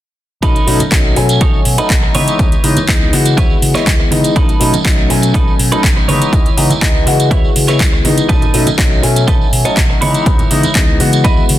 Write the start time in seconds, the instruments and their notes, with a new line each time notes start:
0.42 fingered electric bass B1, grand piano F#3 A3 C#4 D#4, clean electric guitar D#4 A4 B4, kick, closed hi-hat, tambourine
0.55 closed hi-hat, tambourine
0.67 fingered electric bass B2, grand piano F#3 A3 C#4 D#4, open hi-hat
0.79 muted fingered electric bass stroke, closed hi-hat, tambourine, high conga
0.91 fingered electric bass B1, grand piano F#3 A3 C#4 D#4, kick, clap, closed hi-hat
1.05 tambourine
1.16 fingered electric bass B2, grand piano F#3 A3 C#4 G#5, muted clean electric guitar stroke, open hi-hat
1.29 closed hi-hat, tambourine
1.41 fingered electric bass B1, clean electric guitar D#4 A4 C#5, kick, closed hi-hat, tambourine, high conga
1.54 tambourine
1.65 fingered electric bass B2, open hi-hat
1.78 grand piano F#3 A3 C#4 D#4, clean electric guitar D#4 A4 B4, muted fingered electric bass stroke, closed hi-hat, tambourine
1.90 fingered electric bass B1, kick, clap, closed hi-hat
2.03 muted clean electric guitar stroke, tambourine
2.14 fingered electric bass C#3, grand piano E3 G#3 B3 D#4, clean electric guitar E4 B4 C#5, open hi-hat, high conga
2.28 closed hi-hat, tambourine
2.39 fingered electric bass C#2, kick, closed hi-hat, tambourine
2.52 closed hi-hat, tambourine
2.63 fingered electric bass C#3, grand piano E3 G#3 B3 D#4, open hi-hat
2.77 muted fingered electric bass stroke, closed hi-hat, tambourine, high conga
2.88 fingered electric bass C#2, grand piano E3 G#3 B3 D#4, kick, clap, closed hi-hat, tambourine
3.01 tambourine
3.12 fingered electric bass C#3, grand piano E3 G#3 B3 F#4, muted clean electric guitar stroke, open hi-hat
3.25 closed hi-hat, tambourine
3.37 fingered electric bass C#2, clean electric guitar E4 B4 C#5, kick, closed hi-hat, tambourine, high conga
3.50 muted fingered electric bass stroke, tambourine
3.62 fingered electric bass C#3, open hi-hat
3.74 grand piano E3 G#3 B3 D#5, clean electric guitar E4 B4 C#5, muted fingered electric bass stroke, clap, closed hi-hat, tambourine
3.87 fingered electric bass C#2, kick, clap, closed hi-hat
4.00 muted clean electric guitar stroke, tambourine
4.11 fingered electric bass C#3, grand piano E3 G#3 B3 D#4, muted clean electric guitar stroke, open hi-hat, high conga
4.24 closed hi-hat, tambourine
4.36 fingered electric bass B1, clean electric guitar D#4 A4 B4, kick, closed hi-hat
4.49 closed hi-hat, tambourine
4.60 fingered electric bass B2, grand piano F#3 A3 C#4 D#4, open hi-hat
4.73 muted fingered electric bass stroke, closed hi-hat, tambourine, high conga
4.85 fingered electric bass B1, grand piano F#3 A3, kick, clap, closed hi-hat, tambourine
4.98 tambourine
5.09 fingered electric bass B2, grand piano F#3 A3 C#4 G#5, muted clean electric guitar stroke, open hi-hat
5.22 closed hi-hat, tambourine
5.34 fingered electric bass B1, clean electric guitar D#4 A4 B4, kick, closed hi-hat, tambourine, high conga
5.48 tambourine
5.59 fingered electric bass B2, open hi-hat
5.71 grand piano F#3 A3 C#4 D#4, clean electric guitar D#4 A4 B4, muted fingered electric bass stroke, closed hi-hat, tambourine
5.83 fingered electric bass B1, kick, clap, closed hi-hat, tambourine
5.96 muted clean electric guitar stroke, tambourine
6.08 fingered electric bass C#3, grand piano E3 G#3 B3 D#4, clean electric guitar E4 B4 C#5, open hi-hat, high conga
6.21 closed hi-hat, tambourine
6.33 fingered electric bass C#2, grand piano E3, kick, closed hi-hat
6.45 closed hi-hat, tambourine
6.57 fingered electric bass C#3, grand piano E3 G#3 B3 D#4, open hi-hat
6.70 muted fingered electric bass stroke, closed hi-hat, tambourine, high conga
6.81 fingered electric bass C#2, grand piano E3 G#3 B3 D#4, kick, clap, closed hi-hat, tambourine
6.95 tambourine
7.06 fingered electric bass C#3, grand piano E3 G#3 B3 F#4, muted clean electric guitar stroke, open hi-hat
7.20 closed hi-hat, tambourine
7.31 fingered electric bass C#2, clean electric guitar E4 B4 C#5, kick, closed hi-hat, tambourine, high conga
7.44 muted fingered electric bass stroke, tambourine
7.56 fingered electric bass C#3, open hi-hat
7.68 grand piano E3 G#3 B3, clean electric guitar E4 B4 C#5, clap, closed hi-hat, tambourine
7.80 fingered electric bass C#2, kick, clap, closed hi-hat, tambourine
7.93 muted clean electric guitar stroke, tambourine
8.04 fingered electric bass C#3, grand piano E3 G#3 B3 D#4, muted clean electric guitar stroke, open hi-hat, high conga
8.18 closed hi-hat, tambourine
8.29 fingered electric bass B1, clean electric guitar D#4 A4 B4, kick, closed hi-hat, tambourine
8.41 closed hi-hat, tambourine, low conga
8.54 fingered electric bass B2, grand piano F#3 A3 C#4 D#4, open hi-hat
8.67 muted fingered electric bass stroke, closed hi-hat, tambourine, high conga
8.78 fingered electric bass B1, grand piano F#3 A3 C#4 D#4, kick, clap, closed hi-hat, tambourine
8.91 tambourine
9.02 fingered electric bass B2, grand piano F#3 A3 C#4 G#5, muted clean electric guitar stroke, open hi-hat
9.16 closed hi-hat, tambourine
9.27 fingered electric bass B1, clean electric guitar D#4 A4 B4, kick, closed hi-hat, tambourine, high conga
9.41 tambourine
9.52 fingered electric bass B2, open hi-hat
9.65 grand piano F#3 A3 C#4 D#4, clean electric guitar D#4 A4 C#5, muted fingered electric bass stroke, closed hi-hat, tambourine
9.77 fingered electric bass B1, kick, clap, closed hi-hat
9.90 muted clean electric guitar stroke, tambourine
10.01 fingered electric bass C#3, grand piano E3 G#3 B3 D#4, clean electric guitar E4 B4 C#5, open hi-hat, high conga
10.14 closed hi-hat, tambourine
10.26 fingered electric bass C#2, grand piano E3, kick, closed hi-hat
10.39 closed hi-hat, tambourine, low conga
10.50 fingered electric bass C#3, grand piano E3 G#3 B3 D#4, open hi-hat
10.63 muted fingered electric bass stroke, closed hi-hat, tambourine, high conga
10.75 fingered electric bass C#2, grand piano E3 G#3 B3 D#4, kick, clap, closed hi-hat, tambourine
10.88 tambourine
10.99 fingered electric bass C#3, grand piano E3 G#3 B3 F#4, muted clean electric guitar stroke, open hi-hat
11.13 closed hi-hat, tambourine
11.24 fingered electric bass C#2, clean electric guitar E4 B4 D#5, kick, closed hi-hat, tambourine, high conga
11.37 muted fingered electric bass stroke, tambourine
11.49 fingered electric bass C#3, open hi-hat